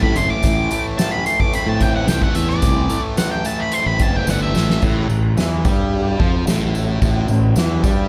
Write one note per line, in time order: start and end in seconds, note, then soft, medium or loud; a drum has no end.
0.00 0.43 A2 medium
0.00 0.14 A2 medium
0.00 0.16 E3 medium
0.00 0.70 A3 medium
0.00 1.52 C4 medium
0.00 0.16 B5 loud
0.00 kick medium
0.16 0.28 F#1 medium
0.16 0.97 E3 medium
0.16 0.30 C6 medium
0.16 closed hi-hat medium
0.16 tambourine medium
0.30 0.85 D6 loud
0.43 0.67 A1 loud
0.43 2.61 A2 medium
0.43 kick loud
0.43 closed hi-hat medium
0.43 tambourine medium
0.71 1.25 A3 medium
0.71 closed hi-hat medium
0.71 tambourine medium
0.98 1.80 E3 medium
0.98 1.12 A5 loud
0.98 snare loud
0.98 closed hi-hat medium
0.98 tambourine loud
1.11 1.26 B5 loud
1.26 2.07 A3 medium
1.26 1.40 C6 medium
1.26 closed hi-hat medium
1.26 tambourine medium
1.40 1.53 D6 loud
1.40 kick medium
1.53 2.90 C4 medium
1.53 1.69 B5 medium
1.53 closed hi-hat medium
1.66 2.02 A2 medium
1.66 1.82 A5 loud
1.81 2.33 E3 medium
1.81 1.95 G5 loud
1.81 kick medium
1.81 closed hi-hat medium
1.81 tambourine soft
1.96 2.08 F#5 medium
2.07 2.19 C2 medium
2.07 2.89 A3 medium
2.07 2.22 G5 loud
2.07 snare medium
2.07 closed hi-hat medium
2.07 tambourine loud
2.22 2.35 F#5 medium
2.22 kick medium
2.35 2.59 E2 medium
2.35 3.17 E3 medium
2.35 2.49 E5 medium
2.35 closed hi-hat medium
2.35 tambourine medium
2.48 3.00 D5 loud
2.48 snare soft
2.62 2.86 C2 medium
2.62 4.00 A2 medium
2.62 kick loud
2.62 closed hi-hat medium
2.62 tambourine medium
2.90 3.44 A3 medium
2.90 closed hi-hat medium
2.90 tambourine medium
3.17 3.99 E3 medium
3.17 3.31 F#5 medium
3.17 snare loud
3.17 closed hi-hat loud
3.17 tambourine loud
3.32 3.46 G5 medium
3.45 4.26 A3 medium
3.45 3.60 A5 loud
3.45 closed hi-hat medium
3.45 tambourine medium
3.60 3.74 B5 medium
3.72 4.82 C4 medium
3.72 3.86 C6 loud
3.72 closed hi-hat medium
3.72 tambourine soft
3.86 3.98 A1 medium
3.86 4.02 B5 medium
3.99 4.25 F#1 medium
3.99 4.54 E3 medium
3.99 4.15 A5 medium
3.99 kick medium
3.99 closed hi-hat medium
4.16 4.29 G5 medium
4.27 4.52 G1 medium
4.27 4.82 A3 medium
4.27 4.42 F#5 medium
4.27 snare medium
4.27 tambourine medium
4.43 4.80 E5 medium
4.54 4.79 A1 medium
4.54 4.82 E3 medium
4.54 snare medium
4.54 tambourine medium
4.70 snare medium
4.82 5.08 A1 medium
4.82 5.08 A2 loud
4.82 kick loud
4.82 crash loud
4.82 tambourine medium
5.09 5.35 A1 medium
5.09 5.31 A2 medium
5.09 ride medium
5.09 tambourine medium
5.37 5.63 E2 medium
5.37 5.64 E3 medium
5.37 snare loud
5.37 ride medium
5.37 tambourine medium
5.65 6.16 G2 medium
5.65 6.19 G3 loud
5.65 kick loud
5.65 ride medium
5.65 tambourine medium
5.93 ride medium
6.20 6.45 F2 loud
6.20 6.46 F3 medium
6.20 kick medium
6.20 ride medium
6.47 6.98 A1 medium
6.47 7.00 A2 loud
6.47 snare loud
6.47 ride medium
6.47 tambourine medium
6.75 ride medium
6.75 tambourine medium
7.01 7.27 A1 medium
7.01 7.28 A2 loud
7.01 kick loud
7.01 ride loud
7.01 tambourine medium
7.28 7.54 A1 medium
7.28 7.51 A2 medium
7.28 ride medium
7.28 tambourine medium
7.56 7.82 E2 medium
7.56 7.83 E3 loud
7.56 snare loud
7.56 ride medium
7.56 tambourine loud
7.83 8.08 G2 medium
7.83 8.08 G3 loud
7.83 kick loud
7.83 ride medium
7.83 tambourine medium